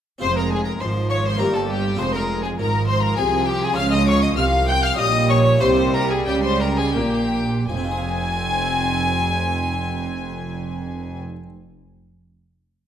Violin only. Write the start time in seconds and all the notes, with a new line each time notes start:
0.23 C5
0.38 A#4
0.52 G#4
0.66 A#4
0.80 C5
1.11 C#5
1.26 C5
1.39 A#4
1.54 A4
1.70 G4
1.98 C5
2.14 A#4
2.43 G#4
2.59 A#4
2.88 C5
3.03 A#4
3.18 G#4
3.48 G4
3.64 G#4
3.78 F5
3.92 D#5
4.08 C#5
4.23 D#5
4.39 F5
4.69 G5
4.83 F5
4.98 D#5
5.30 C#5
5.60 C5
5.94 A#4
6.11 G#4
6.28 G4
6.45 C5
6.60 A#4
6.78 G#4
6.94 G4
7.69 G#5